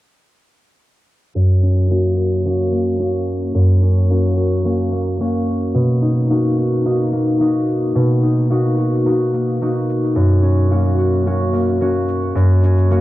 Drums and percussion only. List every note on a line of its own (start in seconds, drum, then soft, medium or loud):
1.36 shaker soft
1.50 shaker soft
1.63 shaker medium
1.77 shaker soft
1.91 shaker soft
2.05 shaker soft
2.18 shaker medium
2.32 shaker soft
2.46 shaker soft
2.74 shaker medium
2.88 shaker soft
3.01 shaker soft
3.15 shaker soft
3.28 shaker medium
3.42 shaker soft
3.55 shaker soft
3.69 shaker soft
3.83 shaker medium
3.97 shaker soft
4.11 shaker soft
4.25 shaker soft
4.39 shaker medium
4.52 shaker soft
4.66 shaker soft
4.80 shaker soft
4.94 shaker medium
5.07 shaker soft
5.21 shaker soft
5.35 shaker soft
5.48 shaker medium
5.62 shaker soft
5.76 shaker soft
5.90 shaker soft
6.03 shaker medium
6.17 shaker soft
6.31 shaker soft
6.45 shaker soft
6.58 shaker medium
6.72 shaker soft
6.86 shaker soft
6.99 shaker soft
7.13 shaker medium
7.27 shaker soft
7.41 shaker soft
7.54 shaker soft
7.56 shaker soft
7.59 shaker soft
7.61 shaker soft
7.64 shaker soft
7.67 shaker soft
7.69 shaker medium
7.83 shaker soft
7.97 shaker soft
8.10 shaker soft
8.24 shaker medium
8.44 shaker soft
8.51 shaker soft
8.65 shaker soft
8.79 shaker medium
8.93 shaker soft
9.06 shaker soft
9.20 shaker soft
9.34 shaker medium
9.48 shaker soft
9.62 shaker soft
9.75 shaker soft
9.89 shaker medium
10.04 shaker soft
10.17 shaker soft
10.30 shaker soft
10.44 shaker medium
10.58 shaker soft
10.72 shaker soft
10.85 shaker soft
10.99 shaker medium
11.13 shaker soft
11.27 shaker soft
11.41 shaker soft
11.54 shaker medium
11.56 shaker medium
11.59 shaker soft
11.61 shaker soft
11.64 shaker soft
11.66 shaker soft
11.68 shaker soft
11.81 shaker soft
11.95 shaker soft
12.08 shaker medium
12.22 shaker soft
12.36 shaker soft
12.50 shaker soft
12.63 shaker medium
12.78 shaker soft
12.91 shaker soft